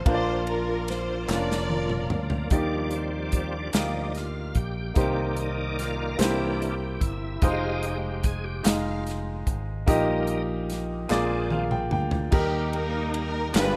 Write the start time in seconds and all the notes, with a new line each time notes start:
Already playing: F3
0.05 A#1 A#2 A#3 D4 F4 C5, kick, ride bell
0.10 F4 C5
0.14 D5
0.47 A#4, ride bell
0.88 C5, snare, ride bell
1.28 F1 A#3 C#4 F4 D5 F5, snare, clap
1.32 D4 A#4
1.51 snare
1.70 high tom
1.90 mid tom
2.10 D2, mid tom
2.30 floor tom
2.50 D#2 D#3 F3 G3 A#3 D4 D#4 G4 D5, kick, closed hi-hat
2.91 closed hi-hat
2.96 C4
3.32 kick, closed hi-hat
3.36 C4
3.56 D4
3.73 D2 F3 A#3 D#4 G4 F5, snare, clap, closed hi-hat
3.77 G3 D#4 D5
4.15 F4, snare, closed hi-hat
4.55 A#1 G4, kick, closed hi-hat
4.94 C2 C3 A#3 D#4 G4 C5, kick, closed hi-hat
4.99 D#3 A#3 D5
5.36 D#4, closed hi-hat
5.79 F4, snare, closed hi-hat
6.14 A#3 A#4
6.18 C2 C3 E3 A#3 D4 E4 G4 C5, snare, clap, closed hi-hat
6.60 G4, closed hi-hat
6.94 G4
7.00 G1 E4, kick, closed hi-hat
7.42 F1 G#3 D#4 F4 G4 C5, kick, closed hi-hat
7.83 G4, closed hi-hat
8.23 G#4, kick, closed hi-hat
8.44 G4
8.63 F1 G#3 D#4 F4 D#5, snare, clap, closed hi-hat
9.07 snare, closed hi-hat
9.47 G#1, kick, closed hi-hat
9.86 A#1 A#2 G3 A#3 D#4 G4 D#5, kick, closed hi-hat
10.27 closed hi-hat
10.70 snare, closed hi-hat
11.09 A#1 A#2 G#3 A#3 C4 D4 F4 G#4 D5, snare, clap
11.50 F5, high tom
11.71 G5, mid tom
11.91 D2 G5, mid tom
12.11 floor tom
12.31 D#2 D#3 G3 A#3 D#4 G4 A#4, kick, crash
12.37 G4
12.73 A#4, ride bell
13.14 ride bell
13.18 A#4
13.53 G1 G2 F3 G#3 B3 D4 F4 G4 A#4, snare, clap, ride bell
13.57 D4 F4 B4
13.62 B4